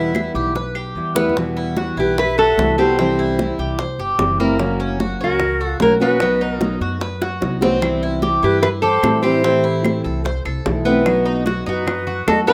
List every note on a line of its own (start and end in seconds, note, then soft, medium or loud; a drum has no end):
0.00 0.29 E2 medium
0.00 0.14 B2 medium
0.00 0.13 E3 medium
0.00 0.14 G3 medium
0.00 0.14 B3 medium
0.00 0.15 E4 medium
0.00 0.34 E4 medium
0.00 0.32 B4 medium
0.00 0.31 E5 medium
0.14 0.54 E3 soft
0.14 0.55 G3 soft
0.14 0.55 B3 soft
0.14 0.55 E4 soft
0.14 high bongo medium
0.14 high conga medium
0.14 claves medium
0.34 0.92 B1 medium
0.34 0.55 G4 medium
0.34 high bongo soft
0.34 high conga soft
0.55 0.75 B4 medium
0.55 muted steel-string acoustic guitar stroke medium
0.55 high bongo medium
0.55 high conga soft
0.75 1.15 G4 medium
0.75 high conga soft
0.75 claves medium
0.95 1.90 E2 medium
0.95 1.15 E3 soft
0.95 1.15 G3 soft
0.95 1.14 B3 soft
0.95 1.14 E4 medium
0.95 high conga soft
1.15 1.36 E3 medium
1.15 1.36 G3 medium
1.15 1.35 B3 medium
1.15 1.36 B3 medium
1.15 1.35 E4 medium
1.15 low bongo medium
1.15 high conga medium
1.29 low conga medium
1.36 1.76 B2 medium
1.36 1.76 E3 medium
1.36 1.76 G3 medium
1.36 1.77 B3 medium
1.36 1.77 F#4 medium
1.36 high bongo medium
1.36 high conga soft
1.56 1.76 E4 medium
1.56 high conga soft
1.77 2.17 E3 medium
1.77 2.17 G3 soft
1.77 2.17 B3 medium
1.77 1.97 F#4 medium
1.77 2.17 F#4 soft
1.77 high bongo medium
1.77 high conga medium
1.97 2.53 B1 medium
1.97 2.36 E4 medium
1.97 2.17 G4 medium
1.97 2.17 B4 medium
1.97 high conga soft
2.18 2.37 B4 medium
2.18 2.37 E5 medium
2.18 muted steel-string acoustic guitar stroke medium
2.18 high bongo medium
2.18 high conga soft
2.18 low conga medium
2.38 2.77 F#4 medium
2.38 2.80 A4 loud
2.38 2.76 E5 medium
2.38 high conga soft
2.58 3.52 C2 medium
2.58 2.77 E3 soft
2.58 2.78 G3 soft
2.58 2.78 B3 soft
2.58 2.78 F#4 soft
2.58 high bongo medium
2.58 low bongo medium
2.58 high conga medium
2.78 2.98 E3 medium
2.78 2.98 G3 medium
2.78 2.98 B3 medium
2.78 2.98 C4 medium
2.78 2.98 F#4 medium
2.78 3.55 G4 medium
2.78 3.55 C5 medium
2.78 high conga soft
2.98 3.38 C3 medium
2.98 3.38 E3 medium
2.98 3.38 G3 medium
2.98 3.18 C4 medium
2.98 3.39 C4 medium
2.98 3.39 E4 medium
2.98 high bongo medium
2.98 high conga soft
3.19 3.58 E4 medium
3.19 high conga soft
3.39 3.78 E3 soft
3.39 3.78 G3 medium
3.39 3.79 C4 soft
3.39 3.79 E4 medium
3.39 high bongo medium
3.39 high conga medium
3.58 3.96 C2 medium
3.58 3.78 G4 medium
3.58 high bongo soft
3.58 high conga soft
3.79 3.99 C5 medium
3.79 muted steel-string acoustic guitar stroke medium
3.79 high bongo medium
3.79 high conga soft
3.99 4.17 G1 medium
3.99 4.38 G4 medium
3.99 high bongo soft
3.99 high conga soft
4.19 5.14 F#1 medium
4.19 4.39 E3 soft
4.19 4.39 G3 medium
4.19 4.39 C4 medium
4.19 4.38 E4 medium
4.19 high bongo medium
4.19 low bongo medium
4.19 high conga soft
4.40 4.58 E3 medium
4.40 4.59 G3 medium
4.40 4.79 A#3 medium
4.40 4.59 C4 medium
4.40 4.59 E4 medium
4.40 high bongo soft
4.40 high conga medium
4.59 4.99 C#3 medium
4.59 4.98 F#3 medium
4.59 4.99 A#3 medium
4.59 4.99 C#4 medium
4.59 4.99 F#4 medium
4.59 high bongo medium
4.59 high conga soft
4.80 4.99 C#4 medium
4.80 high conga soft
5.00 5.39 F#3 soft
5.00 5.39 A#3 soft
5.00 5.40 C#4 soft
5.00 5.19 F#4 medium
5.00 5.40 F#4 medium
5.00 high bongo medium
5.00 high conga loud
5.20 5.77 C#2 medium
5.20 5.59 C#4 medium
5.20 5.67 F#4 medium
5.20 5.62 A#4 medium
5.20 high conga soft
5.40 muted steel-string acoustic guitar stroke medium
5.40 high bongo medium
5.40 high conga soft
5.40 low conga medium
5.60 6.00 F#4 medium
5.60 5.77 A4 medium
5.60 high conga soft
5.67 5.84 F4 medium
5.80 6.75 B1 medium
5.80 6.00 F#3 soft
5.80 6.00 A#3 soft
5.80 5.99 C#4 medium
5.80 5.99 F#4 medium
5.80 5.94 A#4 loud
5.80 5.93 C#5 medium
5.80 high bongo medium
5.80 low bongo medium
5.80 high conga medium
6.00 6.20 F#3 medium
6.00 6.20 A#3 medium
6.00 6.21 B3 medium
6.00 6.20 C#4 medium
6.00 6.20 F#4 medium
6.00 6.54 F#4 medium
6.00 6.54 B4 medium
6.00 high conga soft
6.20 6.60 B2 medium
6.20 6.59 F#3 medium
6.20 6.41 B3 medium
6.20 6.60 B3 medium
6.20 6.60 D#4 medium
6.20 6.61 F#4 medium
6.20 high bongo medium
6.20 high conga soft
6.41 6.80 D#4 medium
6.41 high conga soft
6.54 6.78 F4 medium
6.54 6.77 A#4 medium
6.60 6.99 F#3 soft
6.60 6.99 B3 soft
6.60 7.00 D#4 medium
6.60 7.00 F#4 medium
6.60 high bongo medium
6.60 high conga medium
6.80 7.38 F#2 medium
6.80 7.01 F#4 medium
6.80 high bongo soft
6.80 high conga soft
7.00 7.21 B4 medium
7.00 muted steel-string acoustic guitar stroke medium
7.00 high bongo medium
7.00 high conga soft
7.22 7.61 F#4 medium
7.22 high bongo medium
7.22 high conga soft
7.41 8.37 C2 medium
7.41 7.61 F#3 medium
7.41 7.61 B3 soft
7.41 7.60 D#4 medium
7.41 7.60 F#4 medium
7.41 high bongo medium
7.41 high conga soft
7.61 7.80 F#3 medium
7.61 7.81 B3 medium
7.61 8.02 C4 medium
7.61 7.81 D#4 medium
7.61 7.81 F#4 medium
7.61 low bongo medium
7.61 high conga medium
7.81 8.21 C3 medium
7.81 8.21 E3 medium
7.81 8.21 G3 medium
7.81 8.22 C4 medium
7.81 8.22 E4 medium
7.81 high bongo medium
7.81 high conga soft
7.81 claves medium
8.02 8.22 E4 medium
8.02 high conga soft
8.22 8.62 E3 soft
8.22 8.61 G3 medium
8.22 8.62 C4 medium
8.22 8.62 E4 soft
8.22 8.42 G4 medium
8.22 high bongo medium
8.22 high conga medium
8.43 9.00 G2 medium
8.43 8.82 E4 medium
8.43 8.64 G4 medium
8.43 8.61 B4 medium
8.43 high conga soft
8.61 8.68 B4 loud
8.61 8.67 E5 medium
8.61 muted steel-string acoustic guitar stroke medium
8.61 high bongo medium
8.61 high conga soft
8.61 low conga medium
8.61 claves medium
8.82 9.22 G4 medium
8.82 9.20 A4 medium
8.82 9.20 C5 medium
8.82 high conga soft
8.82 low conga medium
9.03 9.98 A2 medium
9.03 9.23 E3 medium
9.03 9.23 G3 medium
9.03 9.23 C4 soft
9.03 9.24 E4 medium
9.03 high bongo medium
9.03 low bongo medium
9.03 high conga medium
9.03 claves medium
9.21 9.43 C4 medium
9.21 9.44 E4 medium
9.21 10.00 G4 medium
9.21 9.99 C5 medium
9.21 high conga soft
9.25 9.43 E3 medium
9.25 9.44 G3 medium
9.25 9.44 C4 medium
9.44 9.83 E3 medium
9.44 9.83 A3 medium
9.44 9.64 C4 medium
9.44 9.83 C4 medium
9.44 9.84 E4 medium
9.44 high bongo medium
9.44 high conga soft
9.64 10.03 E4 medium
9.64 high conga soft
9.84 10.23 E3 soft
9.84 10.23 A3 soft
9.84 10.23 C4 medium
9.84 10.23 E4 medium
9.84 high bongo medium
9.84 high conga medium
9.84 claves medium
10.04 10.43 C2 medium
10.04 10.24 A4 medium
10.04 high bongo soft
10.04 high conga soft
10.24 10.45 C5 medium
10.24 muted steel-string acoustic guitar stroke medium
10.24 high bongo medium
10.24 high conga soft
10.45 10.64 C2 medium
10.45 10.85 A4 medium
10.45 high bongo soft
10.45 high conga soft
10.45 claves medium
10.65 11.61 B1 medium
10.65 10.85 E3 soft
10.65 10.85 A3 medium
10.65 10.85 C4 soft
10.65 10.85 E4 medium
10.65 high bongo medium
10.65 low bongo medium
10.65 high conga soft
10.85 11.06 A3 medium
10.85 11.25 B3 medium
10.85 11.06 C4 medium
10.85 11.05 E4 medium
10.85 high bongo soft
10.85 high conga medium
11.06 11.45 B2 medium
11.06 11.44 F#3 medium
11.06 11.45 B3 medium
11.06 11.46 D#4 medium
11.06 11.46 F#4 medium
11.06 high bongo medium
11.06 claves medium
11.26 11.45 D#4 medium
11.46 11.86 F#3 soft
11.46 11.86 B3 soft
11.46 11.86 D#4 soft
11.46 11.66 F#4 medium
11.46 11.87 F#4 medium
11.46 high bongo medium
11.46 high conga medium
11.66 12.23 F#2 medium
11.66 12.06 D#4 medium
11.66 12.24 F#4 medium
11.66 12.25 B4 medium
11.66 high conga soft
11.87 muted steel-string acoustic guitar stroke medium
11.87 high bongo medium
11.87 high conga soft
11.87 low conga medium
11.87 claves medium
12.07 12.46 F#4 medium
12.07 high conga soft
12.07 low conga medium
12.27 12.53 E2 medium
12.27 12.46 F#3 soft
12.27 12.47 B3 medium
12.27 12.47 D#4 medium
12.27 12.46 F#4 medium
12.27 12.40 A4 medium
12.27 12.40 D#5 medium
12.27 high bongo medium
12.27 low bongo medium
12.27 high conga medium
12.27 claves medium
12.47 12.53 F#3 medium
12.47 12.53 B3 medium
12.47 12.53 D#4 medium
12.47 12.53 F#4 medium
12.47 12.53 B4 medium
12.47 12.53 E5 medium
12.47 high conga soft